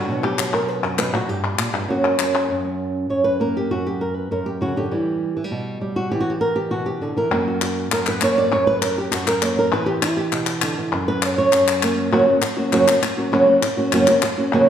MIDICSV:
0, 0, Header, 1, 4, 480
1, 0, Start_track
1, 0, Tempo, 300752
1, 139, Time_signature, 4, 2, 24, 8
1, 23445, End_track
2, 0, Start_track
2, 0, Title_t, "Nylon-string guitar"
2, 0, Program_c, 0, 24
2, 0, Note_on_c, 0, 66, 89
2, 137, Note_on_c, 0, 47, 71
2, 148, Note_on_c, 0, 54, 46
2, 163, Note_on_c, 0, 59, 50
2, 175, Note_on_c, 0, 62, 48
2, 363, Note_off_c, 0, 66, 0
2, 369, Note_on_c, 0, 67, 92
2, 602, Note_off_c, 0, 54, 0
2, 621, Note_on_c, 0, 54, 59
2, 852, Note_off_c, 0, 67, 0
2, 858, Note_on_c, 0, 70, 86
2, 1092, Note_off_c, 0, 70, 0
2, 1092, Note_on_c, 0, 71, 89
2, 1321, Note_on_c, 0, 42, 59
2, 1342, Note_off_c, 0, 71, 0
2, 1342, Note_on_c, 0, 70, 92
2, 1344, Note_off_c, 0, 47, 0
2, 1565, Note_on_c, 0, 47, 57
2, 1567, Note_off_c, 0, 70, 0
2, 1573, Note_on_c, 0, 71, 91
2, 1792, Note_off_c, 0, 42, 0
2, 1799, Note_on_c, 0, 46, 62
2, 1816, Note_off_c, 0, 47, 0
2, 1820, Note_off_c, 0, 71, 0
2, 1828, Note_on_c, 0, 66, 81
2, 2039, Note_off_c, 0, 54, 0
2, 2043, Note_off_c, 0, 46, 0
2, 2049, Note_on_c, 0, 43, 69
2, 2051, Note_off_c, 0, 59, 0
2, 2057, Note_off_c, 0, 62, 0
2, 2059, Note_off_c, 0, 66, 0
2, 2059, Note_on_c, 0, 67, 92
2, 2519, Note_off_c, 0, 43, 0
2, 2526, Note_on_c, 0, 46, 61
2, 2762, Note_off_c, 0, 46, 0
2, 2768, Note_on_c, 0, 43, 61
2, 2999, Note_off_c, 0, 43, 0
2, 3005, Note_on_c, 0, 42, 72
2, 3017, Note_on_c, 0, 54, 47
2, 3025, Note_off_c, 0, 67, 0
2, 3029, Note_on_c, 0, 58, 45
2, 3039, Note_on_c, 0, 61, 49
2, 3039, Note_on_c, 0, 66, 75
2, 3472, Note_off_c, 0, 54, 0
2, 3480, Note_off_c, 0, 61, 0
2, 3491, Note_on_c, 0, 54, 61
2, 3499, Note_on_c, 0, 61, 46
2, 3955, Note_off_c, 0, 54, 0
2, 3966, Note_off_c, 0, 58, 0
2, 3969, Note_off_c, 0, 42, 0
2, 3988, Note_on_c, 0, 42, 66
2, 3995, Note_off_c, 0, 66, 0
2, 4205, Note_off_c, 0, 61, 0
2, 4224, Note_on_c, 0, 61, 43
2, 4924, Note_off_c, 0, 42, 0
2, 4941, Note_on_c, 0, 42, 54
2, 4951, Note_on_c, 0, 73, 69
2, 5169, Note_off_c, 0, 73, 0
2, 5175, Note_on_c, 0, 71, 88
2, 5423, Note_on_c, 0, 58, 57
2, 5427, Note_off_c, 0, 71, 0
2, 5439, Note_on_c, 0, 70, 76
2, 5679, Note_off_c, 0, 70, 0
2, 5694, Note_on_c, 0, 67, 82
2, 5883, Note_off_c, 0, 58, 0
2, 5885, Note_off_c, 0, 61, 0
2, 5904, Note_off_c, 0, 42, 0
2, 5921, Note_on_c, 0, 66, 76
2, 5922, Note_on_c, 0, 42, 70
2, 5927, Note_off_c, 0, 67, 0
2, 6159, Note_off_c, 0, 66, 0
2, 6169, Note_on_c, 0, 67, 80
2, 6401, Note_on_c, 0, 70, 72
2, 6405, Note_off_c, 0, 67, 0
2, 6628, Note_off_c, 0, 70, 0
2, 6628, Note_on_c, 0, 71, 97
2, 6862, Note_off_c, 0, 42, 0
2, 6875, Note_off_c, 0, 71, 0
2, 6882, Note_on_c, 0, 42, 60
2, 6890, Note_on_c, 0, 70, 71
2, 7118, Note_on_c, 0, 67, 88
2, 7126, Note_off_c, 0, 70, 0
2, 7355, Note_on_c, 0, 49, 60
2, 7360, Note_off_c, 0, 67, 0
2, 7370, Note_on_c, 0, 66, 78
2, 7597, Note_off_c, 0, 49, 0
2, 7603, Note_off_c, 0, 66, 0
2, 7604, Note_on_c, 0, 50, 61
2, 7616, Note_on_c, 0, 67, 78
2, 7836, Note_off_c, 0, 50, 0
2, 7842, Note_off_c, 0, 42, 0
2, 7842, Note_on_c, 0, 52, 70
2, 7852, Note_on_c, 0, 55, 48
2, 8545, Note_off_c, 0, 52, 0
2, 8558, Note_off_c, 0, 55, 0
2, 8564, Note_on_c, 0, 52, 50
2, 8682, Note_off_c, 0, 52, 0
2, 8682, Note_on_c, 0, 55, 40
2, 8795, Note_on_c, 0, 47, 64
2, 8807, Note_off_c, 0, 67, 0
2, 9259, Note_off_c, 0, 55, 0
2, 9278, Note_on_c, 0, 55, 59
2, 9514, Note_on_c, 0, 66, 92
2, 9730, Note_off_c, 0, 47, 0
2, 9731, Note_off_c, 0, 55, 0
2, 9758, Note_on_c, 0, 52, 72
2, 9758, Note_on_c, 0, 67, 99
2, 9759, Note_off_c, 0, 66, 0
2, 9903, Note_on_c, 0, 66, 86
2, 9920, Note_off_c, 0, 67, 0
2, 10052, Note_on_c, 0, 67, 78
2, 10073, Note_off_c, 0, 66, 0
2, 10227, Note_off_c, 0, 67, 0
2, 10228, Note_on_c, 0, 70, 95
2, 10464, Note_on_c, 0, 67, 84
2, 10476, Note_off_c, 0, 70, 0
2, 10709, Note_on_c, 0, 66, 80
2, 10713, Note_off_c, 0, 67, 0
2, 10721, Note_on_c, 0, 47, 60
2, 10947, Note_on_c, 0, 67, 89
2, 10956, Note_off_c, 0, 66, 0
2, 11188, Note_off_c, 0, 52, 0
2, 11194, Note_on_c, 0, 50, 59
2, 11195, Note_off_c, 0, 67, 0
2, 11200, Note_on_c, 0, 68, 83
2, 11435, Note_on_c, 0, 52, 59
2, 11439, Note_off_c, 0, 50, 0
2, 11440, Note_off_c, 0, 68, 0
2, 11451, Note_on_c, 0, 70, 90
2, 11653, Note_off_c, 0, 47, 0
2, 11662, Note_on_c, 0, 42, 69
2, 11673, Note_off_c, 0, 52, 0
2, 11680, Note_on_c, 0, 58, 48
2, 11689, Note_on_c, 0, 66, 48
2, 11927, Note_off_c, 0, 66, 0
2, 11933, Note_on_c, 0, 66, 46
2, 12166, Note_off_c, 0, 66, 0
2, 12167, Note_off_c, 0, 70, 0
2, 12173, Note_on_c, 0, 66, 44
2, 12614, Note_off_c, 0, 42, 0
2, 12633, Note_on_c, 0, 42, 65
2, 12655, Note_on_c, 0, 70, 87
2, 12888, Note_off_c, 0, 70, 0
2, 12901, Note_on_c, 0, 71, 101
2, 13089, Note_off_c, 0, 58, 0
2, 13108, Note_on_c, 0, 58, 62
2, 13131, Note_off_c, 0, 71, 0
2, 13141, Note_on_c, 0, 73, 89
2, 13366, Note_off_c, 0, 73, 0
2, 13372, Note_on_c, 0, 74, 110
2, 13561, Note_off_c, 0, 42, 0
2, 13566, Note_off_c, 0, 58, 0
2, 13578, Note_off_c, 0, 66, 0
2, 13581, Note_on_c, 0, 42, 75
2, 13604, Note_off_c, 0, 74, 0
2, 13610, Note_on_c, 0, 73, 92
2, 13833, Note_off_c, 0, 73, 0
2, 13839, Note_on_c, 0, 71, 103
2, 14060, Note_off_c, 0, 71, 0
2, 14066, Note_on_c, 0, 70, 84
2, 14314, Note_off_c, 0, 70, 0
2, 14332, Note_on_c, 0, 67, 94
2, 14544, Note_off_c, 0, 42, 0
2, 14544, Note_on_c, 0, 66, 84
2, 14563, Note_on_c, 0, 42, 62
2, 14566, Note_off_c, 0, 67, 0
2, 14792, Note_off_c, 0, 66, 0
2, 14804, Note_on_c, 0, 70, 104
2, 15037, Note_on_c, 0, 58, 64
2, 15048, Note_off_c, 0, 70, 0
2, 15048, Note_on_c, 0, 73, 107
2, 15284, Note_off_c, 0, 73, 0
2, 15301, Note_on_c, 0, 70, 100
2, 15490, Note_off_c, 0, 58, 0
2, 15521, Note_off_c, 0, 42, 0
2, 15525, Note_on_c, 0, 52, 76
2, 15530, Note_off_c, 0, 70, 0
2, 15536, Note_on_c, 0, 71, 102
2, 15740, Note_on_c, 0, 67, 98
2, 15768, Note_off_c, 0, 71, 0
2, 15989, Note_off_c, 0, 67, 0
2, 15990, Note_on_c, 0, 64, 76
2, 16229, Note_on_c, 0, 67, 89
2, 16234, Note_off_c, 0, 64, 0
2, 16466, Note_on_c, 0, 47, 63
2, 16713, Note_off_c, 0, 67, 0
2, 16960, Note_on_c, 0, 50, 68
2, 17194, Note_off_c, 0, 52, 0
2, 17198, Note_off_c, 0, 50, 0
2, 17213, Note_on_c, 0, 52, 67
2, 17402, Note_off_c, 0, 47, 0
2, 17437, Note_on_c, 0, 42, 74
2, 17445, Note_off_c, 0, 52, 0
2, 17684, Note_on_c, 0, 71, 110
2, 17922, Note_off_c, 0, 71, 0
2, 17922, Note_on_c, 0, 73, 96
2, 18147, Note_off_c, 0, 73, 0
2, 18166, Note_on_c, 0, 73, 100
2, 18371, Note_off_c, 0, 42, 0
2, 18391, Note_on_c, 0, 42, 69
2, 18882, Note_on_c, 0, 58, 66
2, 19238, Note_off_c, 0, 73, 0
2, 19310, Note_off_c, 0, 42, 0
2, 19328, Note_off_c, 0, 58, 0
2, 19329, Note_on_c, 0, 42, 75
2, 19336, Note_on_c, 0, 49, 80
2, 19345, Note_on_c, 0, 54, 83
2, 19351, Note_on_c, 0, 58, 82
2, 19356, Note_on_c, 0, 61, 81
2, 19363, Note_on_c, 0, 66, 90
2, 19558, Note_off_c, 0, 66, 0
2, 19568, Note_off_c, 0, 61, 0
2, 19571, Note_off_c, 0, 42, 0
2, 19574, Note_off_c, 0, 49, 0
2, 19577, Note_on_c, 0, 66, 50
2, 19579, Note_off_c, 0, 54, 0
2, 19581, Note_off_c, 0, 58, 0
2, 19587, Note_on_c, 0, 61, 48
2, 19605, Note_on_c, 0, 58, 49
2, 19609, Note_on_c, 0, 54, 46
2, 19800, Note_off_c, 0, 54, 0
2, 19804, Note_off_c, 0, 58, 0
2, 19807, Note_off_c, 0, 61, 0
2, 19814, Note_off_c, 0, 66, 0
2, 20056, Note_on_c, 0, 66, 54
2, 20065, Note_on_c, 0, 61, 49
2, 20078, Note_on_c, 0, 58, 53
2, 20089, Note_on_c, 0, 54, 48
2, 20290, Note_off_c, 0, 54, 0
2, 20292, Note_on_c, 0, 42, 74
2, 20293, Note_off_c, 0, 66, 0
2, 20298, Note_off_c, 0, 61, 0
2, 20300, Note_off_c, 0, 58, 0
2, 20306, Note_on_c, 0, 49, 74
2, 20309, Note_on_c, 0, 54, 78
2, 20319, Note_on_c, 0, 58, 79
2, 20325, Note_on_c, 0, 61, 86
2, 20327, Note_on_c, 0, 66, 83
2, 20518, Note_off_c, 0, 66, 0
2, 20531, Note_off_c, 0, 42, 0
2, 20534, Note_off_c, 0, 61, 0
2, 20537, Note_on_c, 0, 66, 56
2, 20538, Note_off_c, 0, 49, 0
2, 20540, Note_off_c, 0, 54, 0
2, 20545, Note_off_c, 0, 58, 0
2, 20553, Note_on_c, 0, 61, 51
2, 20573, Note_on_c, 0, 54, 44
2, 20756, Note_off_c, 0, 54, 0
2, 20767, Note_off_c, 0, 61, 0
2, 20768, Note_off_c, 0, 66, 0
2, 21020, Note_on_c, 0, 66, 46
2, 21027, Note_on_c, 0, 61, 47
2, 21032, Note_on_c, 0, 58, 43
2, 21045, Note_on_c, 0, 54, 47
2, 21245, Note_off_c, 0, 54, 0
2, 21254, Note_off_c, 0, 66, 0
2, 21255, Note_off_c, 0, 58, 0
2, 21255, Note_on_c, 0, 49, 81
2, 21257, Note_off_c, 0, 61, 0
2, 21258, Note_on_c, 0, 42, 76
2, 21265, Note_on_c, 0, 54, 85
2, 21274, Note_on_c, 0, 58, 88
2, 21282, Note_on_c, 0, 61, 86
2, 21284, Note_on_c, 0, 66, 90
2, 21463, Note_off_c, 0, 66, 0
2, 21476, Note_off_c, 0, 61, 0
2, 21483, Note_on_c, 0, 66, 56
2, 21486, Note_off_c, 0, 58, 0
2, 21491, Note_off_c, 0, 49, 0
2, 21492, Note_off_c, 0, 42, 0
2, 21495, Note_on_c, 0, 61, 50
2, 21496, Note_off_c, 0, 54, 0
2, 21505, Note_on_c, 0, 58, 51
2, 21524, Note_on_c, 0, 54, 43
2, 21724, Note_off_c, 0, 54, 0
2, 21724, Note_off_c, 0, 66, 0
2, 21731, Note_off_c, 0, 58, 0
2, 21731, Note_off_c, 0, 61, 0
2, 21977, Note_on_c, 0, 66, 60
2, 21991, Note_on_c, 0, 58, 51
2, 21992, Note_on_c, 0, 61, 54
2, 22006, Note_on_c, 0, 54, 44
2, 22211, Note_off_c, 0, 66, 0
2, 22218, Note_off_c, 0, 58, 0
2, 22218, Note_off_c, 0, 61, 0
2, 22222, Note_off_c, 0, 54, 0
2, 22224, Note_on_c, 0, 42, 73
2, 22226, Note_on_c, 0, 49, 80
2, 22241, Note_on_c, 0, 54, 79
2, 22243, Note_on_c, 0, 58, 82
2, 22250, Note_on_c, 0, 66, 82
2, 22254, Note_on_c, 0, 61, 84
2, 22448, Note_off_c, 0, 66, 0
2, 22454, Note_off_c, 0, 42, 0
2, 22455, Note_off_c, 0, 49, 0
2, 22463, Note_off_c, 0, 54, 0
2, 22463, Note_off_c, 0, 58, 0
2, 22467, Note_on_c, 0, 66, 61
2, 22469, Note_off_c, 0, 61, 0
2, 22487, Note_on_c, 0, 61, 54
2, 22493, Note_on_c, 0, 58, 53
2, 22496, Note_on_c, 0, 54, 50
2, 22695, Note_off_c, 0, 66, 0
2, 22700, Note_off_c, 0, 54, 0
2, 22700, Note_off_c, 0, 58, 0
2, 22705, Note_off_c, 0, 61, 0
2, 22945, Note_on_c, 0, 66, 48
2, 22954, Note_on_c, 0, 61, 53
2, 22959, Note_on_c, 0, 58, 46
2, 22974, Note_on_c, 0, 54, 39
2, 23173, Note_off_c, 0, 66, 0
2, 23178, Note_off_c, 0, 61, 0
2, 23180, Note_off_c, 0, 54, 0
2, 23180, Note_off_c, 0, 58, 0
2, 23188, Note_on_c, 0, 42, 75
2, 23194, Note_on_c, 0, 49, 81
2, 23199, Note_on_c, 0, 54, 82
2, 23206, Note_on_c, 0, 58, 88
2, 23209, Note_on_c, 0, 61, 85
2, 23216, Note_on_c, 0, 66, 86
2, 23409, Note_off_c, 0, 66, 0
2, 23415, Note_off_c, 0, 42, 0
2, 23418, Note_off_c, 0, 49, 0
2, 23420, Note_off_c, 0, 54, 0
2, 23420, Note_off_c, 0, 61, 0
2, 23424, Note_off_c, 0, 58, 0
2, 23445, End_track
3, 0, Start_track
3, 0, Title_t, "Muted nylon-string guitar strokes"
3, 19816, Note_on_c, 9, 29, 66
3, 19976, Note_off_c, 9, 29, 0
3, 20770, Note_on_c, 9, 29, 71
3, 20930, Note_off_c, 9, 29, 0
3, 21741, Note_on_c, 9, 29, 67
3, 21900, Note_off_c, 9, 29, 0
3, 22710, Note_on_c, 9, 29, 67
3, 22870, Note_off_c, 9, 29, 0
3, 23445, End_track
4, 0, Start_track
4, 0, Title_t, "Drums"
4, 379, Note_on_c, 9, 39, 50
4, 539, Note_off_c, 9, 39, 0
4, 616, Note_on_c, 9, 39, 87
4, 776, Note_off_c, 9, 39, 0
4, 852, Note_on_c, 9, 39, 46
4, 1012, Note_off_c, 9, 39, 0
4, 1334, Note_on_c, 9, 39, 47
4, 1494, Note_off_c, 9, 39, 0
4, 1573, Note_on_c, 9, 39, 89
4, 1732, Note_off_c, 9, 39, 0
4, 1821, Note_on_c, 9, 39, 48
4, 1980, Note_off_c, 9, 39, 0
4, 2300, Note_on_c, 9, 39, 48
4, 2459, Note_off_c, 9, 39, 0
4, 2533, Note_on_c, 9, 39, 88
4, 2692, Note_off_c, 9, 39, 0
4, 2781, Note_on_c, 9, 39, 48
4, 2941, Note_off_c, 9, 39, 0
4, 3263, Note_on_c, 9, 39, 49
4, 3423, Note_off_c, 9, 39, 0
4, 3497, Note_on_c, 9, 39, 84
4, 3657, Note_off_c, 9, 39, 0
4, 3752, Note_on_c, 9, 39, 50
4, 3911, Note_off_c, 9, 39, 0
4, 12155, Note_on_c, 9, 39, 83
4, 12315, Note_off_c, 9, 39, 0
4, 12634, Note_on_c, 9, 39, 86
4, 12794, Note_off_c, 9, 39, 0
4, 12869, Note_on_c, 9, 39, 80
4, 13029, Note_off_c, 9, 39, 0
4, 13107, Note_on_c, 9, 39, 86
4, 13266, Note_off_c, 9, 39, 0
4, 13599, Note_on_c, 9, 39, 49
4, 13758, Note_off_c, 9, 39, 0
4, 14083, Note_on_c, 9, 39, 88
4, 14242, Note_off_c, 9, 39, 0
4, 14561, Note_on_c, 9, 39, 82
4, 14720, Note_off_c, 9, 39, 0
4, 14801, Note_on_c, 9, 39, 88
4, 14960, Note_off_c, 9, 39, 0
4, 15039, Note_on_c, 9, 39, 88
4, 15199, Note_off_c, 9, 39, 0
4, 15514, Note_on_c, 9, 39, 52
4, 15674, Note_off_c, 9, 39, 0
4, 16001, Note_on_c, 9, 39, 86
4, 16161, Note_off_c, 9, 39, 0
4, 16477, Note_on_c, 9, 39, 79
4, 16637, Note_off_c, 9, 39, 0
4, 16704, Note_on_c, 9, 39, 81
4, 16864, Note_off_c, 9, 39, 0
4, 16946, Note_on_c, 9, 39, 90
4, 17105, Note_off_c, 9, 39, 0
4, 17435, Note_on_c, 9, 39, 50
4, 17595, Note_off_c, 9, 39, 0
4, 17912, Note_on_c, 9, 39, 91
4, 18072, Note_off_c, 9, 39, 0
4, 18394, Note_on_c, 9, 39, 83
4, 18554, Note_off_c, 9, 39, 0
4, 18642, Note_on_c, 9, 39, 91
4, 18801, Note_off_c, 9, 39, 0
4, 18876, Note_on_c, 9, 39, 89
4, 19036, Note_off_c, 9, 39, 0
4, 19359, Note_on_c, 9, 39, 49
4, 19518, Note_off_c, 9, 39, 0
4, 19822, Note_on_c, 9, 39, 84
4, 19982, Note_off_c, 9, 39, 0
4, 20312, Note_on_c, 9, 39, 77
4, 20472, Note_off_c, 9, 39, 0
4, 20556, Note_on_c, 9, 39, 88
4, 20716, Note_off_c, 9, 39, 0
4, 20797, Note_on_c, 9, 39, 81
4, 20957, Note_off_c, 9, 39, 0
4, 21282, Note_on_c, 9, 39, 46
4, 21442, Note_off_c, 9, 39, 0
4, 21751, Note_on_c, 9, 39, 84
4, 21910, Note_off_c, 9, 39, 0
4, 22225, Note_on_c, 9, 39, 83
4, 22384, Note_off_c, 9, 39, 0
4, 22461, Note_on_c, 9, 39, 82
4, 22621, Note_off_c, 9, 39, 0
4, 22698, Note_on_c, 9, 39, 84
4, 22857, Note_off_c, 9, 39, 0
4, 23182, Note_on_c, 9, 39, 48
4, 23342, Note_off_c, 9, 39, 0
4, 23445, End_track
0, 0, End_of_file